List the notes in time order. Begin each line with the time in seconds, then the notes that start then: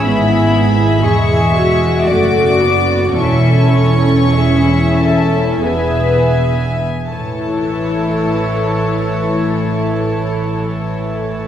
Already playing: G#4
0.05 G#1 G#2 B3 E4 E5 B5
1.03 E1 E2 G#3 G#4 E5 C#6
1.53 F#4
2.06 F#1 F#2 A3 F#4 D5 D6
2.62 B3
3.17 E1 E2 C#4 E4 A4 E5 C#6
3.75 C#5
4.33 E4 G#4 E5
4.95 A4 A5
5.63 E1 E2 B3 G#4 B4 E5 G#5
7.12 A1 A2 E3 E4 A4 C#5 A5